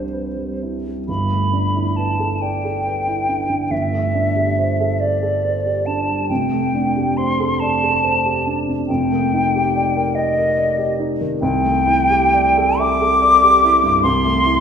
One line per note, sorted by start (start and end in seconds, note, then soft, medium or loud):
0.00 1.05 C2 soft
0.00 1.10 F3 soft
0.00 0.38 G3 soft
0.00 1.11 C4 soft
0.00 1.10 D4 soft
0.00 0.61 C5 soft
0.13 0.52 B4 soft
0.38 0.76 G3 soft
0.62 1.00 E4 soft
0.86 1.09 G3 soft
1.08 3.67 G1 soft
1.08 3.68 G2 soft
1.08 1.98 B5 medium
1.31 1.67 A3 soft
1.53 1.89 D4 soft
1.76 2.11 E4 soft
1.96 2.33 B4 soft
1.96 2.43 A5 medium
2.20 2.56 A4 soft
2.42 2.77 D5 soft
2.42 3.73 G5 medium
2.65 2.99 A4 soft
2.85 3.20 B4 soft
3.07 3.42 E4 soft
3.28 3.63 D4 soft
3.50 3.71 D3 soft
3.70 6.25 G1 soft
3.70 6.26 G2 soft
3.70 5.02 E5 medium
3.93 4.27 A3 soft
4.14 4.49 D4 soft
4.36 4.71 G4 soft
4.59 4.93 C5 soft
4.80 5.15 A4 soft
5.00 5.87 D5 medium
5.00 5.36 D5 soft
5.23 5.57 A4 soft
5.45 5.78 C5 soft
5.66 6.00 G4 soft
5.86 6.21 D4 soft
5.86 6.29 A5 medium
6.09 6.30 G3 soft
6.29 8.85 F1 medium
6.29 8.85 F2 medium
6.29 7.19 G5 medium
6.52 6.87 A3 soft
6.75 7.10 D4 soft
6.96 7.31 G4 soft
7.17 7.53 C5 soft
7.17 7.61 C6 medium
7.40 7.74 A4 soft
7.60 7.95 D5 medium
7.60 8.60 A5 medium
7.83 8.16 A4 soft
8.03 8.37 C5 medium
8.25 8.59 G4 soft
8.47 8.81 D4 soft
8.68 8.89 C3 soft
8.88 11.38 F1 medium
8.88 11.39 F2 medium
8.88 10.17 G5 medium
9.12 9.46 A#3 soft
9.34 9.67 D#4 medium
9.55 9.88 G4 medium
9.76 10.09 D5 soft
9.97 10.29 A#4 medium
10.15 10.98 D#5 medium
10.15 10.50 D#5 medium
10.38 10.71 A#4 medium
10.58 10.91 D5 medium
10.78 11.12 G4 medium
11.00 11.34 D#4 medium
11.21 11.42 D#3 soft
11.42 14.00 C2 medium
11.42 12.81 G5 loud
11.64 12.01 A3 soft
11.87 12.24 E4 medium
12.10 12.48 G4 medium
12.34 12.71 D5 medium
12.58 12.93 A4 medium
12.79 13.14 E5 medium
12.79 14.02 D6 loud
13.02 13.35 A4 medium
13.22 13.55 D5 medium
13.43 13.75 G4 medium
13.64 13.96 E4 medium
13.83 14.04 G2 medium
14.03 14.60 C2 medium
14.03 14.60 C6 loud
14.24 14.57 A3 medium
14.45 14.60 E4 medium